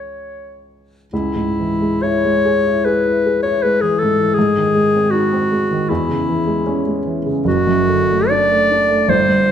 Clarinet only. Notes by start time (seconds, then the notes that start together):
Already playing: C#5
1.14 E4
2.02 C#5
2.85 B4
3.43 C#5
3.62 B4
3.81 G#4
3.98 A4
4.34 G#4
5.11 F#4
5.89 E4
7.47 F#4
8.29 D5
9.10 C5